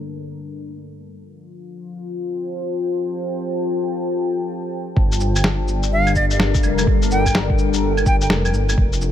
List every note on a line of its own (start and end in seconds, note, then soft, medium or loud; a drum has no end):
0.00 1.16 G3 medium
0.00 2.52 D4 medium
0.00 2.25 A4 medium
0.00 1.15 A#4 medium
1.16 6.41 F4 medium
1.47 5.85 G5 medium
1.47 5.86 A5 medium
1.57 6.30 C5 medium
4.97 6.62 G1 loud
4.97 8.78 G3 medium
4.97 kick loud
5.07 9.12 D4 medium
5.12 shaker soft
5.21 cabasa medium
5.36 claves soft
5.36 shaker medium
5.44 snare loud
5.68 cabasa medium
5.83 8.77 A#4 medium
5.83 shaker medium
5.88 9.12 A4 medium
5.93 6.14 F5 loud
6.07 claves medium
6.07 shaker soft
6.16 6.25 D5 medium
6.16 kick medium
6.16 cabasa medium
6.31 6.37 D5 medium
6.31 shaker medium
6.40 snare loud
6.54 kick loud
6.54 shaker soft
6.63 6.86 F1 medium
6.63 cabasa medium
6.63 claves soft
6.78 claves medium
6.78 shaker medium
6.87 8.29 G1 medium
6.87 kick loud
7.02 shaker soft
7.11 7.37 G5 medium
7.11 cabasa medium
7.26 kick medium
7.26 claves soft
7.26 shaker medium
7.35 snare loud
7.50 kick loud
7.59 cabasa medium
7.74 shaker medium
7.97 claves medium
7.97 shaker soft
8.06 8.16 G5 medium
8.06 kick loud
8.06 cabasa medium
8.21 8.27 G5 medium
8.21 shaker medium
8.30 8.53 F1 medium
8.30 snare loud
8.45 claves medium
8.45 shaker soft
8.54 8.76 G1 medium
8.54 cabasa medium
8.69 claves medium
8.69 shaker medium
8.76 9.12 F1 medium
8.76 9.12 F4 medium
8.76 kick loud
8.90 9.12 C5 medium
8.90 shaker soft
9.02 cabasa medium